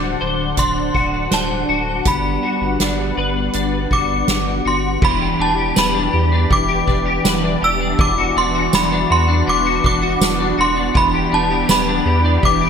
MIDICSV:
0, 0, Header, 1, 6, 480
1, 0, Start_track
1, 0, Key_signature, 1, "minor"
1, 0, Tempo, 740741
1, 1335, Time_signature, 4, 2, 24, 8
1, 8227, End_track
2, 0, Start_track
2, 0, Title_t, "Synth bell"
2, 0, Program_c, 0, 98
2, 0, Note_on_c, 0, 86, 99
2, 382, Note_on_c, 0, 84, 88
2, 409, Note_off_c, 0, 86, 0
2, 866, Note_on_c, 0, 81, 73
2, 873, Note_off_c, 0, 84, 0
2, 1345, Note_on_c, 0, 83, 75
2, 1355, Note_off_c, 0, 81, 0
2, 2546, Note_on_c, 0, 86, 78
2, 2754, Note_off_c, 0, 83, 0
2, 3029, Note_on_c, 0, 84, 72
2, 3035, Note_off_c, 0, 86, 0
2, 3269, Note_off_c, 0, 84, 0
2, 3270, Note_on_c, 0, 83, 92
2, 3509, Note_on_c, 0, 81, 80
2, 3510, Note_off_c, 0, 83, 0
2, 3749, Note_off_c, 0, 81, 0
2, 3749, Note_on_c, 0, 83, 82
2, 4229, Note_on_c, 0, 86, 87
2, 4236, Note_off_c, 0, 83, 0
2, 4951, Note_on_c, 0, 88, 89
2, 4963, Note_off_c, 0, 86, 0
2, 5190, Note_off_c, 0, 88, 0
2, 5190, Note_on_c, 0, 86, 90
2, 5429, Note_off_c, 0, 86, 0
2, 5429, Note_on_c, 0, 84, 88
2, 5668, Note_on_c, 0, 83, 86
2, 5669, Note_off_c, 0, 84, 0
2, 5908, Note_off_c, 0, 83, 0
2, 5909, Note_on_c, 0, 84, 88
2, 6149, Note_off_c, 0, 84, 0
2, 6152, Note_on_c, 0, 86, 90
2, 6367, Note_off_c, 0, 86, 0
2, 6390, Note_on_c, 0, 86, 91
2, 6874, Note_on_c, 0, 84, 92
2, 6877, Note_off_c, 0, 86, 0
2, 7109, Note_on_c, 0, 83, 97
2, 7111, Note_off_c, 0, 84, 0
2, 7349, Note_off_c, 0, 83, 0
2, 7349, Note_on_c, 0, 81, 90
2, 7587, Note_on_c, 0, 83, 98
2, 7589, Note_off_c, 0, 81, 0
2, 8070, Note_on_c, 0, 86, 92
2, 8075, Note_off_c, 0, 83, 0
2, 8227, Note_off_c, 0, 86, 0
2, 8227, End_track
3, 0, Start_track
3, 0, Title_t, "Clean electric guitar"
3, 0, Program_c, 1, 27
3, 0, Note_on_c, 1, 50, 67
3, 0, Note_on_c, 1, 62, 55
3, 0, Note_on_c, 1, 66, 56
3, 135, Note_on_c, 1, 72, 60
3, 371, Note_off_c, 1, 62, 0
3, 373, Note_on_c, 1, 62, 58
3, 610, Note_off_c, 1, 66, 0
3, 612, Note_on_c, 1, 66, 56
3, 846, Note_off_c, 1, 72, 0
3, 853, Note_on_c, 1, 72, 62
3, 1093, Note_off_c, 1, 66, 0
3, 1095, Note_on_c, 1, 66, 55
3, 1332, Note_on_c, 1, 55, 62
3, 1382, Note_off_c, 1, 72, 0
3, 1573, Note_off_c, 1, 66, 0
3, 1576, Note_on_c, 1, 66, 53
3, 1684, Note_off_c, 1, 50, 0
3, 1814, Note_off_c, 1, 62, 0
3, 1817, Note_on_c, 1, 62, 53
3, 2057, Note_on_c, 1, 71, 56
3, 2294, Note_off_c, 1, 62, 0
3, 2297, Note_on_c, 1, 62, 56
3, 2531, Note_off_c, 1, 66, 0
3, 2538, Note_on_c, 1, 66, 48
3, 3008, Note_off_c, 1, 66, 0
3, 3016, Note_on_c, 1, 66, 55
3, 3253, Note_off_c, 1, 55, 0
3, 3255, Note_on_c, 1, 52, 73
3, 3304, Note_off_c, 1, 66, 0
3, 3377, Note_on_c, 1, 67, 54
3, 3493, Note_off_c, 1, 62, 0
3, 3496, Note_on_c, 1, 62, 59
3, 3604, Note_off_c, 1, 67, 0
3, 3612, Note_on_c, 1, 67, 54
3, 3731, Note_off_c, 1, 71, 0
3, 3734, Note_on_c, 1, 71, 65
3, 3848, Note_off_c, 1, 62, 0
3, 3851, Note_on_c, 1, 62, 56
3, 3964, Note_off_c, 1, 67, 0
3, 3971, Note_on_c, 1, 67, 60
3, 4093, Note_off_c, 1, 62, 0
3, 4096, Note_on_c, 1, 62, 55
3, 4207, Note_off_c, 1, 52, 0
3, 4215, Note_on_c, 1, 52, 77
3, 4324, Note_off_c, 1, 67, 0
3, 4332, Note_on_c, 1, 67, 60
3, 4451, Note_off_c, 1, 62, 0
3, 4454, Note_on_c, 1, 62, 57
3, 4565, Note_off_c, 1, 67, 0
3, 4573, Note_on_c, 1, 67, 61
3, 4693, Note_off_c, 1, 71, 0
3, 4695, Note_on_c, 1, 71, 64
3, 4814, Note_off_c, 1, 62, 0
3, 4817, Note_on_c, 1, 62, 56
3, 4930, Note_off_c, 1, 67, 0
3, 4938, Note_on_c, 1, 67, 64
3, 5055, Note_off_c, 1, 62, 0
3, 5057, Note_on_c, 1, 62, 58
3, 5171, Note_off_c, 1, 52, 0
3, 5179, Note_on_c, 1, 52, 70
3, 5224, Note_off_c, 1, 67, 0
3, 5301, Note_on_c, 1, 66, 57
3, 5419, Note_off_c, 1, 62, 0
3, 5421, Note_on_c, 1, 62, 62
3, 5530, Note_off_c, 1, 66, 0
3, 5538, Note_on_c, 1, 66, 61
3, 5778, Note_off_c, 1, 62, 0
3, 5781, Note_on_c, 1, 62, 64
3, 5890, Note_off_c, 1, 66, 0
3, 5898, Note_on_c, 1, 66, 55
3, 6012, Note_off_c, 1, 62, 0
3, 6015, Note_on_c, 1, 62, 62
3, 6134, Note_off_c, 1, 52, 0
3, 6137, Note_on_c, 1, 52, 80
3, 6251, Note_off_c, 1, 66, 0
3, 6258, Note_on_c, 1, 66, 61
3, 6374, Note_off_c, 1, 62, 0
3, 6376, Note_on_c, 1, 62, 58
3, 6487, Note_off_c, 1, 66, 0
3, 6495, Note_on_c, 1, 66, 65
3, 6731, Note_off_c, 1, 62, 0
3, 6733, Note_on_c, 1, 62, 57
3, 6848, Note_off_c, 1, 66, 0
3, 6856, Note_on_c, 1, 66, 67
3, 6963, Note_off_c, 1, 71, 0
3, 6970, Note_off_c, 1, 62, 0
3, 6973, Note_on_c, 1, 62, 57
3, 7089, Note_off_c, 1, 52, 0
3, 7091, Note_on_c, 1, 52, 79
3, 7143, Note_off_c, 1, 66, 0
3, 7215, Note_on_c, 1, 67, 56
3, 7333, Note_off_c, 1, 62, 0
3, 7335, Note_on_c, 1, 62, 64
3, 7454, Note_off_c, 1, 67, 0
3, 7456, Note_on_c, 1, 67, 55
3, 7575, Note_on_c, 1, 71, 65
3, 7695, Note_off_c, 1, 62, 0
3, 7697, Note_on_c, 1, 62, 64
3, 7811, Note_off_c, 1, 67, 0
3, 7814, Note_on_c, 1, 67, 61
3, 7933, Note_off_c, 1, 62, 0
3, 7936, Note_on_c, 1, 62, 60
3, 8045, Note_off_c, 1, 52, 0
3, 8053, Note_on_c, 1, 52, 79
3, 8170, Note_off_c, 1, 67, 0
3, 8173, Note_on_c, 1, 67, 60
3, 8227, Note_off_c, 1, 52, 0
3, 8227, Note_off_c, 1, 62, 0
3, 8227, Note_off_c, 1, 67, 0
3, 8227, Note_off_c, 1, 71, 0
3, 8227, End_track
4, 0, Start_track
4, 0, Title_t, "Analog synth pad"
4, 0, Program_c, 2, 89
4, 0, Note_on_c, 2, 50, 81
4, 0, Note_on_c, 2, 62, 80
4, 0, Note_on_c, 2, 72, 71
4, 0, Note_on_c, 2, 78, 93
4, 1317, Note_off_c, 2, 50, 0
4, 1317, Note_off_c, 2, 72, 0
4, 1335, Note_on_c, 2, 55, 80
4, 1336, Note_on_c, 2, 59, 75
4, 3230, Note_off_c, 2, 62, 0
4, 3230, Note_off_c, 2, 78, 0
4, 3236, Note_off_c, 2, 55, 0
4, 3236, Note_off_c, 2, 59, 0
4, 3256, Note_on_c, 2, 52, 93
4, 3256, Note_on_c, 2, 62, 78
4, 3257, Note_on_c, 2, 67, 97
4, 3259, Note_on_c, 2, 59, 77
4, 5157, Note_off_c, 2, 67, 0
4, 5179, Note_on_c, 2, 66, 98
4, 7069, Note_off_c, 2, 52, 0
4, 7078, Note_off_c, 2, 66, 0
4, 7099, Note_on_c, 2, 52, 86
4, 7099, Note_on_c, 2, 67, 99
4, 8227, Note_off_c, 2, 52, 0
4, 8227, Note_off_c, 2, 59, 0
4, 8227, Note_off_c, 2, 62, 0
4, 8227, Note_off_c, 2, 67, 0
4, 8227, End_track
5, 0, Start_track
5, 0, Title_t, "Sub bass"
5, 0, Program_c, 3, 38
5, 0, Note_on_c, 3, 26, 92
5, 105, Note_off_c, 3, 26, 0
5, 137, Note_on_c, 3, 26, 81
5, 347, Note_off_c, 3, 26, 0
5, 372, Note_on_c, 3, 26, 109
5, 584, Note_off_c, 3, 26, 0
5, 612, Note_on_c, 3, 26, 92
5, 825, Note_off_c, 3, 26, 0
5, 855, Note_on_c, 3, 26, 90
5, 1066, Note_off_c, 3, 26, 0
5, 1092, Note_on_c, 3, 26, 90
5, 1305, Note_off_c, 3, 26, 0
5, 1332, Note_on_c, 3, 31, 108
5, 1545, Note_off_c, 3, 31, 0
5, 1692, Note_on_c, 3, 31, 89
5, 1799, Note_off_c, 3, 31, 0
5, 1813, Note_on_c, 3, 31, 87
5, 2025, Note_off_c, 3, 31, 0
5, 2054, Note_on_c, 3, 31, 90
5, 2266, Note_off_c, 3, 31, 0
5, 2296, Note_on_c, 3, 31, 99
5, 2507, Note_off_c, 3, 31, 0
5, 2533, Note_on_c, 3, 31, 87
5, 2745, Note_off_c, 3, 31, 0
5, 2776, Note_on_c, 3, 31, 89
5, 2987, Note_off_c, 3, 31, 0
5, 3014, Note_on_c, 3, 31, 88
5, 3226, Note_off_c, 3, 31, 0
5, 3254, Note_on_c, 3, 28, 102
5, 3465, Note_off_c, 3, 28, 0
5, 3495, Note_on_c, 3, 28, 93
5, 3706, Note_off_c, 3, 28, 0
5, 3736, Note_on_c, 3, 28, 96
5, 3947, Note_off_c, 3, 28, 0
5, 3974, Note_on_c, 3, 40, 91
5, 4186, Note_off_c, 3, 40, 0
5, 4214, Note_on_c, 3, 28, 111
5, 4426, Note_off_c, 3, 28, 0
5, 4455, Note_on_c, 3, 28, 101
5, 4666, Note_off_c, 3, 28, 0
5, 4696, Note_on_c, 3, 28, 90
5, 4907, Note_off_c, 3, 28, 0
5, 4937, Note_on_c, 3, 28, 100
5, 5148, Note_off_c, 3, 28, 0
5, 5176, Note_on_c, 3, 28, 112
5, 5387, Note_off_c, 3, 28, 0
5, 5417, Note_on_c, 3, 28, 91
5, 5627, Note_off_c, 3, 28, 0
5, 5658, Note_on_c, 3, 28, 93
5, 5868, Note_off_c, 3, 28, 0
5, 5899, Note_on_c, 3, 40, 93
5, 6108, Note_off_c, 3, 40, 0
5, 6141, Note_on_c, 3, 28, 115
5, 6349, Note_off_c, 3, 28, 0
5, 6377, Note_on_c, 3, 28, 98
5, 6588, Note_off_c, 3, 28, 0
5, 6613, Note_on_c, 3, 28, 92
5, 6825, Note_off_c, 3, 28, 0
5, 6856, Note_on_c, 3, 28, 97
5, 7067, Note_off_c, 3, 28, 0
5, 7097, Note_on_c, 3, 28, 101
5, 7307, Note_off_c, 3, 28, 0
5, 7336, Note_on_c, 3, 28, 94
5, 7547, Note_off_c, 3, 28, 0
5, 7574, Note_on_c, 3, 28, 92
5, 7786, Note_off_c, 3, 28, 0
5, 7810, Note_on_c, 3, 40, 93
5, 8023, Note_off_c, 3, 40, 0
5, 8056, Note_on_c, 3, 28, 109
5, 8227, Note_off_c, 3, 28, 0
5, 8227, End_track
6, 0, Start_track
6, 0, Title_t, "Drums"
6, 370, Note_on_c, 9, 42, 59
6, 373, Note_on_c, 9, 36, 77
6, 435, Note_off_c, 9, 42, 0
6, 437, Note_off_c, 9, 36, 0
6, 613, Note_on_c, 9, 36, 73
6, 678, Note_off_c, 9, 36, 0
6, 851, Note_on_c, 9, 38, 90
6, 852, Note_on_c, 9, 42, 64
6, 915, Note_off_c, 9, 38, 0
6, 917, Note_off_c, 9, 42, 0
6, 1330, Note_on_c, 9, 42, 73
6, 1332, Note_on_c, 9, 36, 97
6, 1395, Note_off_c, 9, 42, 0
6, 1397, Note_off_c, 9, 36, 0
6, 1813, Note_on_c, 9, 38, 87
6, 1813, Note_on_c, 9, 42, 61
6, 1878, Note_off_c, 9, 38, 0
6, 1878, Note_off_c, 9, 42, 0
6, 2290, Note_on_c, 9, 42, 56
6, 2355, Note_off_c, 9, 42, 0
6, 2533, Note_on_c, 9, 36, 70
6, 2598, Note_off_c, 9, 36, 0
6, 2772, Note_on_c, 9, 38, 98
6, 2773, Note_on_c, 9, 42, 65
6, 2837, Note_off_c, 9, 38, 0
6, 2838, Note_off_c, 9, 42, 0
6, 3252, Note_on_c, 9, 49, 90
6, 3254, Note_on_c, 9, 36, 109
6, 3317, Note_off_c, 9, 49, 0
6, 3319, Note_off_c, 9, 36, 0
6, 3734, Note_on_c, 9, 54, 64
6, 3735, Note_on_c, 9, 38, 100
6, 3735, Note_on_c, 9, 51, 60
6, 3799, Note_off_c, 9, 54, 0
6, 3800, Note_off_c, 9, 38, 0
6, 3800, Note_off_c, 9, 51, 0
6, 4214, Note_on_c, 9, 51, 53
6, 4216, Note_on_c, 9, 36, 88
6, 4279, Note_off_c, 9, 51, 0
6, 4281, Note_off_c, 9, 36, 0
6, 4456, Note_on_c, 9, 36, 76
6, 4521, Note_off_c, 9, 36, 0
6, 4697, Note_on_c, 9, 38, 105
6, 4698, Note_on_c, 9, 51, 61
6, 4698, Note_on_c, 9, 54, 66
6, 4761, Note_off_c, 9, 38, 0
6, 4763, Note_off_c, 9, 51, 0
6, 4763, Note_off_c, 9, 54, 0
6, 5176, Note_on_c, 9, 36, 111
6, 5177, Note_on_c, 9, 51, 63
6, 5241, Note_off_c, 9, 36, 0
6, 5241, Note_off_c, 9, 51, 0
6, 5657, Note_on_c, 9, 54, 67
6, 5658, Note_on_c, 9, 38, 104
6, 5658, Note_on_c, 9, 51, 54
6, 5722, Note_off_c, 9, 54, 0
6, 5723, Note_off_c, 9, 38, 0
6, 5723, Note_off_c, 9, 51, 0
6, 6378, Note_on_c, 9, 36, 83
6, 6443, Note_off_c, 9, 36, 0
6, 6618, Note_on_c, 9, 38, 104
6, 6620, Note_on_c, 9, 54, 63
6, 6683, Note_off_c, 9, 38, 0
6, 6684, Note_off_c, 9, 54, 0
6, 7097, Note_on_c, 9, 36, 103
6, 7098, Note_on_c, 9, 51, 62
6, 7162, Note_off_c, 9, 36, 0
6, 7162, Note_off_c, 9, 51, 0
6, 7575, Note_on_c, 9, 54, 68
6, 7576, Note_on_c, 9, 38, 109
6, 7576, Note_on_c, 9, 51, 59
6, 7640, Note_off_c, 9, 54, 0
6, 7641, Note_off_c, 9, 38, 0
6, 7641, Note_off_c, 9, 51, 0
6, 8053, Note_on_c, 9, 51, 53
6, 8056, Note_on_c, 9, 36, 91
6, 8118, Note_off_c, 9, 51, 0
6, 8121, Note_off_c, 9, 36, 0
6, 8227, End_track
0, 0, End_of_file